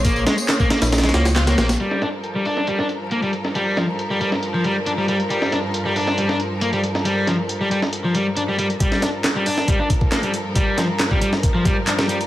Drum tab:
HH |x---x---x---x-x-xxxxx-x-x-x-x-x-|x---x---x---o---x---x---x-x-x---|x---x---x---x---x---x---x---x-x-|x---x---x---o---x---x---x-x-x---|
TB |x-x---x-x-x---x-x-x---x-x-x---x-|--------------------------------|--------------------------------|--------------------------------|
CP |--------x---------------x-------|--------------------------------|--------------------------------|--------------------------------|
SD |----o---o---o-o-ooooo-o-o-o-o-o-|--o-o---------o---o-----------o-|----o---------o-----------------|--o-o---------o---o-----------o-|
BD |o---------o---------------------|--------------------------------|--------------------------------|--------------------------------|

HH |x---x---x---x---x---x---x---x-x-|x---x---x---o---x---x---x-x-x---|x---x---x---x---x---x---x---x-x-|
TB |--------------------------------|--------------------------------|--------------------------------|
CP |--------------------------------|--------x---------------x-------|--------x---------------x-------|
SD |----o---------o-----------------|--o-o---o-----o---------o-------|----o---o-----o-----------o-----|
BD |--------------------------------|o---------------o---o-o---------|o---------o-----o---o-----------|